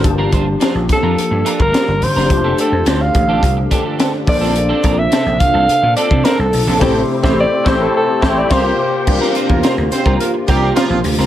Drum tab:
CC |----------------|----------------|----------------|x-----------x---|
HH |x-x-x-x-x-x-x-o-|x-x-x-x-x-x-x-o-|x-x-x-x-x-x-x-o-|----------------|
SD |----o-o-----o--o|----o-------o--o|----o-------o--o|o--o--o---o-o---|
BD |o-o---o----o----|o-----o-o-o---o-|--o---o----o----|o--o--o---o-o---|

CC |x---------------|
HH |--x-x-x-x-x-x-o-|
SD |-o--o-o-----o--o|
BD |o--o---o--o-----|